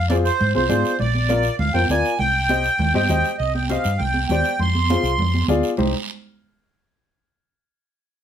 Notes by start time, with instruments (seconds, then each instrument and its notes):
Already playing: fingered electric bass F2
0.09 upright piano F4 G#4 C5, accordion D5, high conga, short guiro
0.25 accordion C5, short guiro
0.40 fingered electric bass G#2, high conga, low conga, long guiro
0.54 fingered electric bass C2, upright piano F4 G#4 C5, accordion C5, high conga
0.69 fingered electric bass G#2, upright piano F4 G#4 D5, high conga, low conga, short guiro
0.85 short guiro
0.99 fingered electric bass A#1, accordion D5, high conga, low conga, long guiro
1.15 high conga
1.29 upright piano F4 A#4 D5, high conga, short guiro
1.43 short guiro
1.59 fingered electric bass D2, accordion F5, high conga, low conga, long guiro
1.74 fingered electric bass F2, upright piano F4 A#4 C5, accordion G5, high conga
1.89 fingered electric bass D2, upright piano F4 A#4 D5, accordion G#5, high conga, short guiro
2.05 short guiro
2.19 fingered electric bass C2, accordion G5, high conga, low conga, long guiro
2.49 upright piano G4 C5 D#5, high conga, short guiro
2.64 short guiro
2.79 fingered electric bass D#2, high conga, low conga, long guiro
2.94 fingered electric bass G2, upright piano G4 C5 D#5, accordion G5, high conga
3.09 fingered electric bass D#2, upright piano G4 C5 D#5, high conga, low conga, short guiro
3.24 short guiro
3.38 fingered electric bass C2, accordion D#5, high conga, long guiro
3.54 accordion G5, high conga
3.70 upright piano G4 C5 D#5, accordion F5, high conga, short guiro
3.84 fingered electric bass G2, short guiro
3.98 fingered electric bass C2, accordion G5, high conga, low conga, long guiro
4.14 high conga
4.28 fingered electric bass D#2, upright piano G4 C5 D5, accordion G5, high conga, low conga, short guiro
4.44 short guiro
4.59 fingered electric bass F2, accordion C6, high conga, low conga, long guiro
4.75 high conga
4.89 upright piano F4 G#4 C5, high conga, short guiro
5.03 fingered electric bass C2, short guiro
5.18 fingered electric bass F2, high conga, low conga, long guiro
5.34 high conga
5.48 fingered electric bass D2, upright piano F4 G#4 D5, high conga, low conga, short guiro
5.63 short guiro
5.77 fingered electric bass C2, upright piano D#4 G4 C5, low conga, long guiro